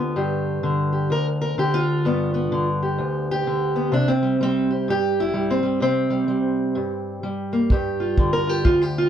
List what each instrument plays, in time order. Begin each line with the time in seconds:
Already playing: steel-string acoustic guitar D2 D3 B3 F4 G4
0.16 steel-string acoustic guitar G2 G4
0.63 steel-string acoustic guitar D3
0.93 steel-string acoustic guitar G4
1.10 steel-string acoustic guitar D2 A#4
1.42 steel-string acoustic guitar A#4
1.58 steel-string acoustic guitar D3 G4
1.74 steel-string acoustic guitar F4
2.05 steel-string acoustic guitar G2 B3
2.34 steel-string acoustic guitar B3
2.52 steel-string acoustic guitar D3
2.83 steel-string acoustic guitar G4
2.98 steel-string acoustic guitar D2
3.31 steel-string acoustic guitar G4
3.47 steel-string acoustic guitar D3
3.76 steel-string acoustic guitar B3
3.92 steel-string acoustic guitar C3 D4
4.08 steel-string acoustic guitar C4
4.22 steel-string acoustic guitar G3
4.41 steel-string acoustic guitar G3 C4
4.70 steel-string acoustic guitar G4
4.88 steel-string acoustic guitar G2 G4
5.20 steel-string acoustic guitar E4
5.34 steel-string acoustic guitar G3
5.51 steel-string acoustic guitar C4
5.63 steel-string acoustic guitar G3
5.80 steel-string acoustic guitar C3 C4
6.10 steel-string acoustic guitar G3
6.28 steel-string acoustic guitar G3
6.75 steel-string acoustic guitar G2
7.23 steel-string acoustic guitar G3
7.53 steel-string acoustic guitar A#3
7.70 steel-string acoustic guitar G2 G4, kick
8.00 steel-string acoustic guitar F4
8.18 steel-string acoustic guitar D3, kick
8.33 steel-string acoustic guitar A#4
8.47 steel-string acoustic guitar F4 G4
8.65 steel-string acoustic guitar D2 F4, kick
8.81 steel-string acoustic guitar G4
8.98 steel-string acoustic guitar F4